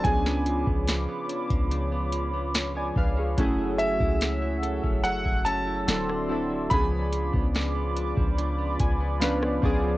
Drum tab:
HH |x-x-x-xxx-x-x---|x-x-x-x-x-x-x---|x-x-x-x-x-x-x---|
SD |-o--o-------o---|----o-------or--|----o-------or--|
BD |o--o---o------o-|o--o---o-o------|o--o---o--o---o-|